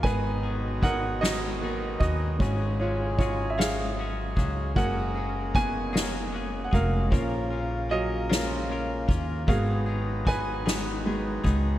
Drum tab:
RD |xx-xxx|xxxxxx|xxxxx-|xxxxxx|
SD |---o--|---o--|---o--|---o--|
BD |o-o--o|o-o--o|o-o--o|o----o|

RD |xx-xxx|
SD |---o--|
BD |o-o--o|